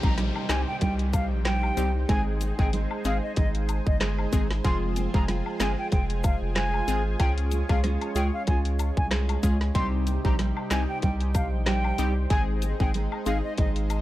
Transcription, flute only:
0, 0, Header, 1, 2, 480
1, 0, Start_track
1, 0, Tempo, 638298
1, 1572, Time_signature, 4, 2, 24, 8
1, 10539, End_track
2, 0, Start_track
2, 0, Title_t, "Flute"
2, 0, Program_c, 0, 73
2, 29, Note_on_c, 0, 82, 72
2, 100, Note_off_c, 0, 82, 0
2, 372, Note_on_c, 0, 80, 79
2, 463, Note_off_c, 0, 80, 0
2, 507, Note_on_c, 0, 79, 87
2, 579, Note_off_c, 0, 79, 0
2, 613, Note_on_c, 0, 79, 75
2, 704, Note_off_c, 0, 79, 0
2, 853, Note_on_c, 0, 77, 76
2, 944, Note_off_c, 0, 77, 0
2, 1092, Note_on_c, 0, 79, 86
2, 1444, Note_off_c, 0, 79, 0
2, 1574, Note_on_c, 0, 80, 105
2, 1665, Note_off_c, 0, 80, 0
2, 1949, Note_on_c, 0, 79, 85
2, 2020, Note_off_c, 0, 79, 0
2, 2297, Note_on_c, 0, 77, 83
2, 2387, Note_off_c, 0, 77, 0
2, 2429, Note_on_c, 0, 75, 82
2, 2500, Note_off_c, 0, 75, 0
2, 2534, Note_on_c, 0, 75, 91
2, 2625, Note_off_c, 0, 75, 0
2, 2909, Note_on_c, 0, 75, 73
2, 2980, Note_off_c, 0, 75, 0
2, 3496, Note_on_c, 0, 84, 101
2, 3586, Note_off_c, 0, 84, 0
2, 3868, Note_on_c, 0, 82, 74
2, 3939, Note_off_c, 0, 82, 0
2, 4215, Note_on_c, 0, 80, 84
2, 4305, Note_off_c, 0, 80, 0
2, 4349, Note_on_c, 0, 79, 84
2, 4420, Note_off_c, 0, 79, 0
2, 4453, Note_on_c, 0, 79, 77
2, 4544, Note_off_c, 0, 79, 0
2, 4692, Note_on_c, 0, 77, 74
2, 4784, Note_off_c, 0, 77, 0
2, 4932, Note_on_c, 0, 80, 87
2, 5284, Note_off_c, 0, 80, 0
2, 5412, Note_on_c, 0, 79, 105
2, 5503, Note_off_c, 0, 79, 0
2, 5787, Note_on_c, 0, 77, 90
2, 5858, Note_off_c, 0, 77, 0
2, 6132, Note_on_c, 0, 79, 90
2, 6224, Note_off_c, 0, 79, 0
2, 6268, Note_on_c, 0, 77, 79
2, 6339, Note_off_c, 0, 77, 0
2, 6371, Note_on_c, 0, 80, 89
2, 6463, Note_off_c, 0, 80, 0
2, 6747, Note_on_c, 0, 80, 71
2, 6819, Note_off_c, 0, 80, 0
2, 7332, Note_on_c, 0, 84, 102
2, 7424, Note_off_c, 0, 84, 0
2, 7708, Note_on_c, 0, 82, 70
2, 7779, Note_off_c, 0, 82, 0
2, 8054, Note_on_c, 0, 80, 85
2, 8145, Note_off_c, 0, 80, 0
2, 8188, Note_on_c, 0, 79, 87
2, 8260, Note_off_c, 0, 79, 0
2, 8295, Note_on_c, 0, 79, 76
2, 8385, Note_off_c, 0, 79, 0
2, 8533, Note_on_c, 0, 77, 75
2, 8624, Note_off_c, 0, 77, 0
2, 8774, Note_on_c, 0, 79, 85
2, 9125, Note_off_c, 0, 79, 0
2, 9252, Note_on_c, 0, 80, 106
2, 9343, Note_off_c, 0, 80, 0
2, 9628, Note_on_c, 0, 79, 90
2, 9700, Note_off_c, 0, 79, 0
2, 9972, Note_on_c, 0, 77, 84
2, 10063, Note_off_c, 0, 77, 0
2, 10105, Note_on_c, 0, 75, 85
2, 10177, Note_off_c, 0, 75, 0
2, 10213, Note_on_c, 0, 75, 91
2, 10304, Note_off_c, 0, 75, 0
2, 10539, End_track
0, 0, End_of_file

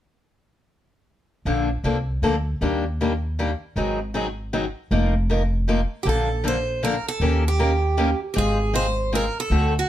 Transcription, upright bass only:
0, 0, Header, 1, 2, 480
1, 0, Start_track
1, 0, Key_signature, -2, "major"
1, 0, Tempo, 382897
1, 1833, Time_signature, 3, 2, 24, 8
1, 12397, End_track
2, 0, Start_track
2, 0, Title_t, "Upright bass"
2, 0, Program_c, 0, 32
2, 1822, Note_on_c, 0, 34, 65
2, 2211, Note_off_c, 0, 34, 0
2, 2301, Note_on_c, 0, 36, 64
2, 2714, Note_off_c, 0, 36, 0
2, 2783, Note_on_c, 0, 38, 61
2, 3196, Note_off_c, 0, 38, 0
2, 3272, Note_on_c, 0, 39, 69
2, 4425, Note_off_c, 0, 39, 0
2, 4710, Note_on_c, 0, 32, 66
2, 5864, Note_off_c, 0, 32, 0
2, 6153, Note_on_c, 0, 29, 72
2, 7306, Note_off_c, 0, 29, 0
2, 7589, Note_on_c, 0, 34, 69
2, 8743, Note_off_c, 0, 34, 0
2, 9025, Note_on_c, 0, 39, 71
2, 10181, Note_off_c, 0, 39, 0
2, 10486, Note_on_c, 0, 32, 72
2, 11634, Note_off_c, 0, 32, 0
2, 11911, Note_on_c, 0, 38, 71
2, 12296, Note_off_c, 0, 38, 0
2, 12397, End_track
0, 0, End_of_file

